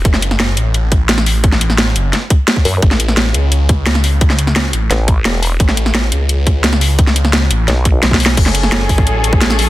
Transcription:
0.05 detuned saw bass F#1, kick, closed hi-hat
0.14 snare
0.22 closed hi-hat
0.31 snare
0.40 snare, closed hi-hat
0.57 detuned saw bass A1, closed hi-hat
0.74 closed hi-hat
0.92 kick, closed hi-hat
1.09 snare, closed hi-hat
1.18 snare
1.26 open hi-hat
1.44 kick, closed hi-hat
1.52 snare
1.61 closed hi-hat
1.70 snare
1.78 snare, closed hi-hat
1.96 detuned saw bass F#1, closed hi-hat
2.13 snare, closed hi-hat
2.30 kick, closed hi-hat
2.48 snare, closed hi-hat
2.56 kick
2.65 wobble bass F#2, open hi-hat
2.82 detuned saw bass A1, kick, closed hi-hat
2.91 snare
3.00 closed hi-hat
3.08 snare
3.17 snare, closed hi-hat
3.34 detuned saw bass C#2, closed hi-hat
3.52 closed hi-hat
3.69 kick, closed hi-hat
3.87 snare, closed hi-hat
3.95 snare
4.04 open hi-hat
4.21 kick, closed hi-hat
4.30 snare
4.39 closed hi-hat
4.47 snare
4.56 snare, closed hi-hat
4.73 detuned saw bass A1, closed hi-hat
4.91 wobble bass A1, snare, closed hi-hat
5.08 kick, closed hi-hat
5.25 wobble bass E1, snare, closed hi-hat
5.43 open hi-hat
5.60 detuned saw bass A1, kick, closed hi-hat
5.69 snare
5.77 closed hi-hat
5.86 snare
5.95 snare, closed hi-hat
6.12 detuned saw bass C#2, closed hi-hat
6.29 closed hi-hat
6.47 kick, closed hi-hat
6.64 snare, closed hi-hat
6.73 snare
6.81 open hi-hat
6.99 kick, closed hi-hat
7.07 snare
7.16 closed hi-hat
7.25 snare
7.33 snare, closed hi-hat
7.51 detuned saw bass A1, closed hi-hat
7.68 wobble bass B1, snare, closed hi-hat
7.85 kick, closed hi-hat
8.03 detuned saw bass B1, snare, closed hi-hat
8.11 kick, snare
8.20 open hi-hat
8.26 snare
8.37 detuned saw bass F#1, string section F#3 C#4 G#4 A4, kick, closed hi-hat, crash
8.46 snare
8.55 closed hi-hat
8.63 snare
8.72 snare, closed hi-hat
8.89 detuned saw bass A1, kick, open hi-hat
8.98 kick
9.07 closed hi-hat
9.24 closed hi-hat
9.33 kick
9.41 snare, closed hi-hat
9.50 snare
9.59 open hi-hat

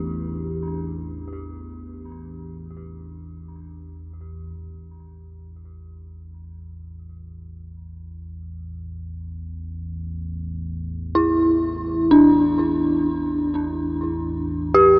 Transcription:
Already playing: synth drone A1 E2, synth bell D4 G4
4.58 synth drone A1 E2
11.15 synth bell E4
12.11 synth bell D4
14.74 synth bell G4

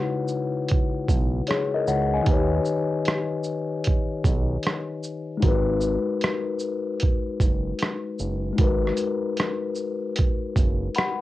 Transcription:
Already playing: tine electric piano C#3 G#3 D#4 E4 F#4 B4 C#5 F#5
0.28 shaker
0.68 kick, closed hi-hat
1.08 analog synth bass B1, kick, closed hi-hat, shaker
1.47 tine electric piano G#4 C#5, cross-stick, closed hi-hat
1.74 tine electric piano A#4 D#5
1.87 analog synth bass C#2, tine electric piano C#5 F#5, shaker
2.14 tine electric piano D#5 G#5
2.22 tine electric piano D#3 D#4
2.26 analog synth bass D#2, tine electric piano G4 B4, kick, closed hi-hat
2.33 tine electric piano C#5
2.65 shaker
3.05 cross-stick, closed hi-hat
3.44 shaker
3.84 kick, closed hi-hat
4.24 analog synth bass B1, kick, closed hi-hat, shaker
4.63 cross-stick, closed hi-hat
5.03 shaker
5.37 tine electric piano G#3 D#4
5.42 analog synth bass G#1, tine electric piano F#4 A#4, kick, closed hi-hat
5.48 tine electric piano B4
5.81 shaker
6.21 cross-stick, closed hi-hat
6.59 shaker
7.00 kick, closed hi-hat
7.40 analog synth bass F#1, kick, closed hi-hat, shaker
7.79 cross-stick, closed hi-hat
8.19 analog synth bass F#1, shaker
8.53 tine electric piano G#3 D#4
8.58 analog synth bass G#1, tine electric piano F#4 A#4, kick, closed hi-hat
8.64 tine electric piano B4
8.87 cross-stick
8.97 closed hi-hat, shaker
9.37 cross-stick, closed hi-hat
9.75 shaker
10.16 kick, closed hi-hat
10.56 analog synth bass F#1, kick, closed hi-hat, shaker
10.95 tine electric piano F#5 B5, cross-stick, closed hi-hat

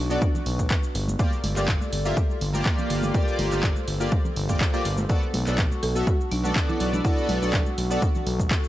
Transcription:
Already playing: analog synth bass B1, ambient pad B3 D4 F#4 B4 C#6, marimba D4
0.10 analog polysynth B3 F#4 A4 D5, cabasa
0.22 marimba D4, kick, high conga, cabasa
0.35 low conga, cabasa
0.46 analog synth bass B1, open hi-hat
0.59 kick, high conga, cabasa
0.71 kick, clap, cabasa
0.83 cabasa
0.95 analog synth bass G1, ambient pad A#3 F4 G4 A4 D5, open hi-hat
1.08 high conga, cabasa
1.19 analog polysynth A#3 F4 G4 D5, kick, cabasa
1.32 cabasa
1.44 analog synth bass G1, open hi-hat, high conga
1.56 analog synth bass G1, analog polysynth A#3 F4 G4 D5, clap, cabasa
1.68 kick, clap, cabasa
1.81 high conga, cabasa
1.93 analog synth bass G1, open hi-hat
2.05 analog polysynth A#3 F4 G4 E5, cabasa
2.16 kick, high conga, cabasa
2.31 cabasa
2.41 analog synth bass G1, open hi-hat
2.53 analog polysynth A#3 F4 G4 D5, high conga, cabasa
2.66 kick, clap, cabasa
2.79 low conga, cabasa
2.90 analog synth bass G1, ambient pad C5, open hi-hat
3.03 high conga, low conga, cabasa
3.14 analog polysynth A#3 F4 G4 D5, kick, cabasa
3.28 cabasa
3.39 analog synth bass G1, open hi-hat, high conga
3.51 analog synth bass G1, analog polysynth A#3 F4 G4 D5, clap, cabasa
3.63 kick, clap, cabasa
3.76 high conga, cabasa
3.88 analog synth bass G1, open hi-hat
4.00 analog polysynth A#3 F4 G4 D5, cabasa
4.11 kick, high conga, cabasa
4.25 low conga, cabasa
4.36 analog synth bass G1, open hi-hat
4.49 analog polysynth A#3 F4 G4 D5, kick, high conga, cabasa
4.61 kick, clap, cabasa
4.73 analog polysynth A#3 F4 G4 D5, cabasa
4.85 analog synth bass G1, open hi-hat
4.97 high conga, cabasa
5.09 analog polysynth B3 F#4 A4 D5, ambient pad B3 D4 F#4 C#6, kick, cabasa
5.23 cabasa
5.34 analog synth bass B1, open hi-hat, high conga
5.46 analog synth bass B1, analog polysynth B3 F#4 A4 D5, clap, cabasa
5.58 kick, clap, cabasa
5.72 high conga, cabasa
5.83 analog synth bass B1, marimba A4, open hi-hat
5.95 analog polysynth B3 F#4 A4 E5, cabasa
6.07 marimba F#4, kick, high conga, cabasa
6.21 cabasa
6.31 analog synth bass B1, marimba D4, open hi-hat
6.43 analog polysynth B3 F#4 A4 D5, high conga, cabasa
6.56 kick, clap, cabasa
6.69 marimba E4, low conga, cabasa
6.80 analog synth bass B1, open hi-hat
6.93 marimba D4, high conga, low conga, cabasa
7.04 analog polysynth B3 F#4 A4 D5, marimba E4, kick, cabasa
7.18 cabasa
7.29 analog synth bass B1, open hi-hat, high conga
7.41 analog synth bass B1, analog polysynth B3 F#4 A4 D5, marimba D4, cabasa
7.53 kick, clap, cabasa
7.66 high conga, cabasa
7.78 analog synth bass B1, open hi-hat
7.90 analog polysynth B3 F#4 A4 D5, cabasa
8.02 kick, high conga, cabasa
8.15 low conga, cabasa
8.27 analog synth bass B1, open hi-hat
8.39 kick, high conga, cabasa
8.51 kick, clap, cabasa
8.64 cabasa

